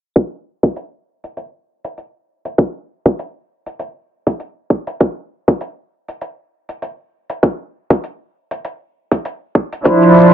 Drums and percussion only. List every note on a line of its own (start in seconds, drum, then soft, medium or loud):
0.16 kick loud
0.16 closed hi-hat soft
0.63 kick medium
0.63 closed hi-hat medium
0.76 closed hi-hat soft
1.24 closed hi-hat medium
1.37 closed hi-hat soft
1.84 closed hi-hat medium
1.98 closed hi-hat soft
2.45 closed hi-hat medium
2.58 kick loud
2.58 closed hi-hat soft
3.06 kick loud
3.06 closed hi-hat medium
3.19 closed hi-hat soft
3.66 closed hi-hat medium
3.79 closed hi-hat medium
4.27 kick medium
4.27 closed hi-hat medium
4.40 closed hi-hat soft
4.70 kick medium
4.87 closed hi-hat medium
5.00 kick loud
5.00 closed hi-hat soft
5.48 kick loud
5.48 closed hi-hat medium
5.61 closed hi-hat soft
6.08 closed hi-hat medium
6.21 closed hi-hat soft
6.69 closed hi-hat medium
6.82 closed hi-hat soft
7.30 closed hi-hat medium
7.43 kick loud
7.43 closed hi-hat soft
7.90 kick loud
7.90 closed hi-hat medium
8.04 closed hi-hat soft
8.51 closed hi-hat medium
8.65 closed hi-hat soft
9.11 kick medium
9.11 closed hi-hat medium
9.25 closed hi-hat soft
9.55 kick medium
9.73 closed hi-hat medium
9.85 kick loud
9.85 closed hi-hat soft
9.85 shekere medium
10.02 shekere soft